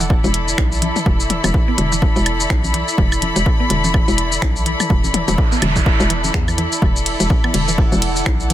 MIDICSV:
0, 0, Header, 1, 7, 480
1, 0, Start_track
1, 0, Tempo, 480000
1, 1061, Time_signature, 4, 2, 24, 8
1, 8534, End_track
2, 0, Start_track
2, 0, Title_t, "String section"
2, 0, Program_c, 0, 48
2, 0, Note_on_c, 0, 64, 83
2, 0, Note_on_c, 0, 69, 85
2, 0, Note_on_c, 0, 74, 72
2, 0, Note_on_c, 0, 78, 95
2, 225, Note_on_c, 0, 83, 93
2, 251, Note_off_c, 0, 78, 0
2, 7906, Note_on_c, 0, 78, 92
2, 7930, Note_off_c, 0, 83, 0
2, 8534, Note_off_c, 0, 64, 0
2, 8534, Note_off_c, 0, 69, 0
2, 8534, Note_off_c, 0, 74, 0
2, 8534, Note_off_c, 0, 78, 0
2, 8534, End_track
3, 0, Start_track
3, 0, Title_t, "Synth drone"
3, 0, Program_c, 1, 95
3, 6820, Note_on_c, 1, 52, 84
3, 6820, Note_on_c, 1, 64, 85
3, 8534, Note_off_c, 1, 52, 0
3, 8534, Note_off_c, 1, 64, 0
3, 8534, End_track
4, 0, Start_track
4, 0, Title_t, "Synth arpeggio sound"
4, 0, Program_c, 2, 84
4, 1, Note_on_c, 2, 52, 79
4, 23, Note_off_c, 2, 52, 0
4, 241, Note_on_c, 2, 64, 79
4, 278, Note_off_c, 2, 64, 0
4, 581, Note_on_c, 2, 64, 81
4, 612, Note_off_c, 2, 64, 0
4, 820, Note_on_c, 2, 52, 75
4, 872, Note_off_c, 2, 52, 0
4, 1060, Note_on_c, 2, 52, 83
4, 1092, Note_off_c, 2, 52, 0
4, 1441, Note_on_c, 2, 52, 73
4, 1463, Note_off_c, 2, 52, 0
4, 1681, Note_on_c, 2, 59, 77
4, 1718, Note_off_c, 2, 59, 0
4, 1781, Note_on_c, 2, 50, 101
4, 1858, Note_off_c, 2, 50, 0
4, 1921, Note_on_c, 2, 52, 77
4, 1943, Note_off_c, 2, 52, 0
4, 2161, Note_on_c, 2, 64, 78
4, 2198, Note_off_c, 2, 64, 0
4, 2501, Note_on_c, 2, 64, 81
4, 2532, Note_off_c, 2, 64, 0
4, 2741, Note_on_c, 2, 52, 76
4, 2792, Note_off_c, 2, 52, 0
4, 2981, Note_on_c, 2, 52, 84
4, 3012, Note_off_c, 2, 52, 0
4, 3361, Note_on_c, 2, 52, 77
4, 3383, Note_off_c, 2, 52, 0
4, 3601, Note_on_c, 2, 59, 79
4, 3638, Note_off_c, 2, 59, 0
4, 3701, Note_on_c, 2, 50, 103
4, 3778, Note_off_c, 2, 50, 0
4, 3841, Note_on_c, 2, 52, 80
4, 3863, Note_off_c, 2, 52, 0
4, 4081, Note_on_c, 2, 64, 79
4, 4118, Note_off_c, 2, 64, 0
4, 4420, Note_on_c, 2, 64, 82
4, 4452, Note_off_c, 2, 64, 0
4, 4661, Note_on_c, 2, 52, 75
4, 4712, Note_off_c, 2, 52, 0
4, 4900, Note_on_c, 2, 52, 81
4, 4932, Note_off_c, 2, 52, 0
4, 5281, Note_on_c, 2, 52, 77
4, 5303, Note_off_c, 2, 52, 0
4, 5522, Note_on_c, 2, 59, 79
4, 5558, Note_off_c, 2, 59, 0
4, 5621, Note_on_c, 2, 50, 99
4, 5698, Note_off_c, 2, 50, 0
4, 5762, Note_on_c, 2, 52, 78
4, 5784, Note_off_c, 2, 52, 0
4, 6001, Note_on_c, 2, 64, 81
4, 6038, Note_off_c, 2, 64, 0
4, 6101, Note_on_c, 2, 52, 78
4, 6153, Note_off_c, 2, 52, 0
4, 6340, Note_on_c, 2, 52, 80
4, 6392, Note_off_c, 2, 52, 0
4, 6481, Note_on_c, 2, 52, 79
4, 6536, Note_off_c, 2, 52, 0
4, 6580, Note_on_c, 2, 52, 100
4, 6632, Note_off_c, 2, 52, 0
4, 6821, Note_on_c, 2, 52, 86
4, 6852, Note_off_c, 2, 52, 0
4, 7201, Note_on_c, 2, 52, 77
4, 7223, Note_off_c, 2, 52, 0
4, 7441, Note_on_c, 2, 59, 78
4, 7478, Note_off_c, 2, 59, 0
4, 7541, Note_on_c, 2, 50, 100
4, 7618, Note_off_c, 2, 50, 0
4, 7681, Note_on_c, 2, 52, 76
4, 7703, Note_off_c, 2, 52, 0
4, 7921, Note_on_c, 2, 52, 81
4, 7958, Note_off_c, 2, 52, 0
4, 8261, Note_on_c, 2, 64, 80
4, 8292, Note_off_c, 2, 64, 0
4, 8501, Note_on_c, 2, 52, 76
4, 8534, Note_off_c, 2, 52, 0
4, 8534, End_track
5, 0, Start_track
5, 0, Title_t, "FM bass"
5, 0, Program_c, 3, 39
5, 0, Note_on_c, 3, 28, 86
5, 191, Note_off_c, 3, 28, 0
5, 241, Note_on_c, 3, 28, 104
5, 545, Note_off_c, 3, 28, 0
5, 580, Note_on_c, 3, 35, 101
5, 911, Note_off_c, 3, 35, 0
5, 1060, Note_on_c, 3, 28, 94
5, 1391, Note_off_c, 3, 28, 0
5, 1441, Note_on_c, 3, 28, 99
5, 1518, Note_off_c, 3, 28, 0
5, 1780, Note_on_c, 3, 28, 86
5, 2111, Note_off_c, 3, 28, 0
5, 2161, Note_on_c, 3, 28, 106
5, 2465, Note_off_c, 3, 28, 0
5, 2501, Note_on_c, 3, 35, 100
5, 2831, Note_off_c, 3, 35, 0
5, 2981, Note_on_c, 3, 28, 98
5, 3311, Note_off_c, 3, 28, 0
5, 3361, Note_on_c, 3, 28, 100
5, 3438, Note_off_c, 3, 28, 0
5, 3701, Note_on_c, 3, 28, 84
5, 4031, Note_off_c, 3, 28, 0
5, 4081, Note_on_c, 3, 28, 100
5, 4385, Note_off_c, 3, 28, 0
5, 4421, Note_on_c, 3, 35, 102
5, 4751, Note_off_c, 3, 35, 0
5, 4900, Note_on_c, 3, 28, 93
5, 5231, Note_off_c, 3, 28, 0
5, 5281, Note_on_c, 3, 28, 97
5, 5358, Note_off_c, 3, 28, 0
5, 5620, Note_on_c, 3, 28, 83
5, 5950, Note_off_c, 3, 28, 0
5, 6001, Note_on_c, 3, 28, 106
5, 6305, Note_off_c, 3, 28, 0
5, 6341, Note_on_c, 3, 40, 85
5, 6671, Note_off_c, 3, 40, 0
5, 6821, Note_on_c, 3, 28, 99
5, 7151, Note_off_c, 3, 28, 0
5, 7201, Note_on_c, 3, 28, 99
5, 7278, Note_off_c, 3, 28, 0
5, 7541, Note_on_c, 3, 28, 83
5, 7871, Note_off_c, 3, 28, 0
5, 7921, Note_on_c, 3, 28, 105
5, 8225, Note_off_c, 3, 28, 0
5, 8261, Note_on_c, 3, 35, 103
5, 8534, Note_off_c, 3, 35, 0
5, 8534, End_track
6, 0, Start_track
6, 0, Title_t, "Noise sweep"
6, 0, Program_c, 4, 103
6, 4901, Note_on_c, 4, 60, 62
6, 6821, Note_off_c, 4, 60, 0
6, 8534, End_track
7, 0, Start_track
7, 0, Title_t, "Drums"
7, 1, Note_on_c, 9, 82, 50
7, 100, Note_on_c, 9, 36, 117
7, 101, Note_off_c, 9, 82, 0
7, 200, Note_off_c, 9, 36, 0
7, 241, Note_on_c, 9, 63, 42
7, 241, Note_on_c, 9, 82, 28
7, 340, Note_off_c, 9, 63, 0
7, 340, Note_on_c, 9, 42, 94
7, 341, Note_off_c, 9, 82, 0
7, 440, Note_off_c, 9, 42, 0
7, 481, Note_on_c, 9, 82, 53
7, 580, Note_on_c, 9, 26, 106
7, 580, Note_on_c, 9, 36, 118
7, 580, Note_on_c, 9, 42, 36
7, 580, Note_on_c, 9, 76, 64
7, 581, Note_off_c, 9, 82, 0
7, 680, Note_off_c, 9, 26, 0
7, 680, Note_off_c, 9, 36, 0
7, 680, Note_off_c, 9, 42, 0
7, 680, Note_off_c, 9, 76, 0
7, 721, Note_on_c, 9, 82, 42
7, 820, Note_on_c, 9, 42, 90
7, 820, Note_on_c, 9, 63, 46
7, 821, Note_off_c, 9, 82, 0
7, 920, Note_off_c, 9, 42, 0
7, 920, Note_off_c, 9, 63, 0
7, 961, Note_on_c, 9, 47, 76
7, 961, Note_on_c, 9, 82, 51
7, 1061, Note_off_c, 9, 47, 0
7, 1061, Note_off_c, 9, 82, 0
7, 1061, Note_on_c, 9, 36, 119
7, 1161, Note_off_c, 9, 36, 0
7, 1201, Note_on_c, 9, 82, 44
7, 1300, Note_on_c, 9, 42, 91
7, 1301, Note_off_c, 9, 82, 0
7, 1301, Note_on_c, 9, 47, 79
7, 1400, Note_off_c, 9, 42, 0
7, 1401, Note_off_c, 9, 47, 0
7, 1441, Note_on_c, 9, 42, 36
7, 1441, Note_on_c, 9, 47, 92
7, 1441, Note_on_c, 9, 63, 46
7, 1441, Note_on_c, 9, 76, 68
7, 1441, Note_on_c, 9, 82, 53
7, 1541, Note_off_c, 9, 42, 0
7, 1541, Note_off_c, 9, 47, 0
7, 1541, Note_off_c, 9, 63, 0
7, 1541, Note_off_c, 9, 76, 0
7, 1541, Note_off_c, 9, 82, 0
7, 1541, Note_on_c, 9, 36, 121
7, 1641, Note_off_c, 9, 36, 0
7, 1781, Note_on_c, 9, 42, 91
7, 1881, Note_off_c, 9, 42, 0
7, 1922, Note_on_c, 9, 82, 53
7, 2021, Note_on_c, 9, 36, 114
7, 2021, Note_on_c, 9, 63, 43
7, 2022, Note_off_c, 9, 82, 0
7, 2121, Note_off_c, 9, 36, 0
7, 2121, Note_off_c, 9, 63, 0
7, 2162, Note_on_c, 9, 82, 30
7, 2261, Note_on_c, 9, 42, 91
7, 2261, Note_on_c, 9, 76, 67
7, 2262, Note_off_c, 9, 82, 0
7, 2361, Note_off_c, 9, 42, 0
7, 2361, Note_off_c, 9, 76, 0
7, 2401, Note_on_c, 9, 82, 54
7, 2501, Note_off_c, 9, 82, 0
7, 2501, Note_on_c, 9, 26, 105
7, 2501, Note_on_c, 9, 36, 118
7, 2501, Note_on_c, 9, 42, 35
7, 2601, Note_off_c, 9, 26, 0
7, 2601, Note_off_c, 9, 36, 0
7, 2601, Note_off_c, 9, 42, 0
7, 2642, Note_on_c, 9, 63, 45
7, 2642, Note_on_c, 9, 82, 42
7, 2741, Note_on_c, 9, 42, 88
7, 2742, Note_off_c, 9, 63, 0
7, 2742, Note_off_c, 9, 82, 0
7, 2841, Note_off_c, 9, 42, 0
7, 2881, Note_on_c, 9, 82, 56
7, 2981, Note_off_c, 9, 82, 0
7, 2981, Note_on_c, 9, 36, 114
7, 3081, Note_off_c, 9, 36, 0
7, 3122, Note_on_c, 9, 76, 69
7, 3122, Note_on_c, 9, 82, 45
7, 3221, Note_on_c, 9, 42, 91
7, 3221, Note_on_c, 9, 63, 41
7, 3222, Note_off_c, 9, 76, 0
7, 3222, Note_off_c, 9, 82, 0
7, 3321, Note_off_c, 9, 42, 0
7, 3321, Note_off_c, 9, 63, 0
7, 3362, Note_on_c, 9, 42, 37
7, 3362, Note_on_c, 9, 82, 54
7, 3461, Note_on_c, 9, 36, 117
7, 3462, Note_off_c, 9, 42, 0
7, 3462, Note_off_c, 9, 82, 0
7, 3561, Note_off_c, 9, 36, 0
7, 3701, Note_on_c, 9, 42, 92
7, 3801, Note_off_c, 9, 42, 0
7, 3842, Note_on_c, 9, 63, 42
7, 3842, Note_on_c, 9, 82, 53
7, 3941, Note_on_c, 9, 36, 109
7, 3941, Note_on_c, 9, 76, 69
7, 3942, Note_off_c, 9, 63, 0
7, 3942, Note_off_c, 9, 82, 0
7, 4041, Note_off_c, 9, 36, 0
7, 4041, Note_off_c, 9, 76, 0
7, 4082, Note_on_c, 9, 82, 30
7, 4181, Note_on_c, 9, 42, 89
7, 4182, Note_off_c, 9, 82, 0
7, 4281, Note_off_c, 9, 42, 0
7, 4322, Note_on_c, 9, 82, 56
7, 4421, Note_on_c, 9, 26, 107
7, 4421, Note_on_c, 9, 36, 117
7, 4421, Note_on_c, 9, 42, 36
7, 4421, Note_on_c, 9, 63, 42
7, 4422, Note_off_c, 9, 82, 0
7, 4521, Note_off_c, 9, 26, 0
7, 4521, Note_off_c, 9, 36, 0
7, 4521, Note_off_c, 9, 42, 0
7, 4521, Note_off_c, 9, 63, 0
7, 4562, Note_on_c, 9, 82, 44
7, 4661, Note_on_c, 9, 42, 88
7, 4662, Note_off_c, 9, 82, 0
7, 4761, Note_off_c, 9, 42, 0
7, 4801, Note_on_c, 9, 47, 78
7, 4801, Note_on_c, 9, 76, 67
7, 4802, Note_on_c, 9, 82, 58
7, 4901, Note_off_c, 9, 47, 0
7, 4901, Note_off_c, 9, 76, 0
7, 4901, Note_on_c, 9, 36, 123
7, 4902, Note_off_c, 9, 82, 0
7, 5001, Note_off_c, 9, 36, 0
7, 5041, Note_on_c, 9, 63, 44
7, 5042, Note_on_c, 9, 82, 47
7, 5140, Note_on_c, 9, 47, 87
7, 5141, Note_off_c, 9, 63, 0
7, 5141, Note_on_c, 9, 42, 91
7, 5142, Note_off_c, 9, 82, 0
7, 5240, Note_off_c, 9, 47, 0
7, 5241, Note_off_c, 9, 42, 0
7, 5281, Note_on_c, 9, 47, 99
7, 5282, Note_on_c, 9, 42, 38
7, 5282, Note_on_c, 9, 82, 57
7, 5381, Note_off_c, 9, 47, 0
7, 5381, Note_on_c, 9, 36, 119
7, 5382, Note_off_c, 9, 42, 0
7, 5382, Note_off_c, 9, 82, 0
7, 5481, Note_off_c, 9, 36, 0
7, 5522, Note_on_c, 9, 82, 32
7, 5620, Note_on_c, 9, 63, 44
7, 5620, Note_on_c, 9, 76, 68
7, 5621, Note_off_c, 9, 82, 0
7, 5621, Note_on_c, 9, 42, 89
7, 5720, Note_off_c, 9, 63, 0
7, 5720, Note_off_c, 9, 76, 0
7, 5721, Note_off_c, 9, 42, 0
7, 5761, Note_on_c, 9, 36, 59
7, 5761, Note_on_c, 9, 82, 53
7, 5861, Note_off_c, 9, 36, 0
7, 5861, Note_off_c, 9, 82, 0
7, 5861, Note_on_c, 9, 36, 118
7, 5961, Note_off_c, 9, 36, 0
7, 6001, Note_on_c, 9, 82, 31
7, 6101, Note_off_c, 9, 82, 0
7, 6101, Note_on_c, 9, 42, 86
7, 6201, Note_off_c, 9, 42, 0
7, 6241, Note_on_c, 9, 63, 43
7, 6242, Note_on_c, 9, 82, 57
7, 6341, Note_off_c, 9, 63, 0
7, 6341, Note_on_c, 9, 26, 110
7, 6341, Note_on_c, 9, 36, 118
7, 6341, Note_on_c, 9, 42, 36
7, 6342, Note_off_c, 9, 82, 0
7, 6441, Note_off_c, 9, 26, 0
7, 6441, Note_off_c, 9, 36, 0
7, 6441, Note_off_c, 9, 42, 0
7, 6481, Note_on_c, 9, 76, 68
7, 6481, Note_on_c, 9, 82, 43
7, 6581, Note_off_c, 9, 76, 0
7, 6581, Note_off_c, 9, 82, 0
7, 6581, Note_on_c, 9, 42, 87
7, 6681, Note_off_c, 9, 42, 0
7, 6722, Note_on_c, 9, 82, 58
7, 6821, Note_on_c, 9, 36, 124
7, 6822, Note_off_c, 9, 82, 0
7, 6921, Note_off_c, 9, 36, 0
7, 6962, Note_on_c, 9, 82, 46
7, 7062, Note_off_c, 9, 82, 0
7, 7062, Note_on_c, 9, 42, 95
7, 7062, Note_on_c, 9, 51, 88
7, 7161, Note_off_c, 9, 42, 0
7, 7161, Note_off_c, 9, 51, 0
7, 7202, Note_on_c, 9, 42, 39
7, 7202, Note_on_c, 9, 82, 56
7, 7301, Note_on_c, 9, 36, 123
7, 7301, Note_on_c, 9, 63, 47
7, 7302, Note_off_c, 9, 42, 0
7, 7302, Note_off_c, 9, 82, 0
7, 7401, Note_off_c, 9, 36, 0
7, 7401, Note_off_c, 9, 63, 0
7, 7441, Note_on_c, 9, 76, 67
7, 7541, Note_off_c, 9, 76, 0
7, 7541, Note_on_c, 9, 42, 91
7, 7541, Note_on_c, 9, 51, 83
7, 7641, Note_off_c, 9, 42, 0
7, 7641, Note_off_c, 9, 51, 0
7, 7681, Note_on_c, 9, 82, 54
7, 7781, Note_off_c, 9, 82, 0
7, 7781, Note_on_c, 9, 36, 121
7, 7881, Note_off_c, 9, 36, 0
7, 7921, Note_on_c, 9, 82, 30
7, 7922, Note_on_c, 9, 63, 43
7, 8021, Note_off_c, 9, 82, 0
7, 8021, Note_on_c, 9, 42, 90
7, 8021, Note_on_c, 9, 51, 85
7, 8022, Note_off_c, 9, 63, 0
7, 8121, Note_off_c, 9, 42, 0
7, 8121, Note_off_c, 9, 51, 0
7, 8161, Note_on_c, 9, 82, 58
7, 8261, Note_off_c, 9, 82, 0
7, 8261, Note_on_c, 9, 26, 114
7, 8261, Note_on_c, 9, 36, 122
7, 8261, Note_on_c, 9, 42, 37
7, 8261, Note_on_c, 9, 76, 69
7, 8361, Note_off_c, 9, 26, 0
7, 8361, Note_off_c, 9, 36, 0
7, 8361, Note_off_c, 9, 42, 0
7, 8361, Note_off_c, 9, 76, 0
7, 8402, Note_on_c, 9, 82, 44
7, 8501, Note_on_c, 9, 42, 91
7, 8501, Note_on_c, 9, 51, 83
7, 8501, Note_on_c, 9, 63, 46
7, 8502, Note_off_c, 9, 82, 0
7, 8534, Note_off_c, 9, 42, 0
7, 8534, Note_off_c, 9, 51, 0
7, 8534, Note_off_c, 9, 63, 0
7, 8534, End_track
0, 0, End_of_file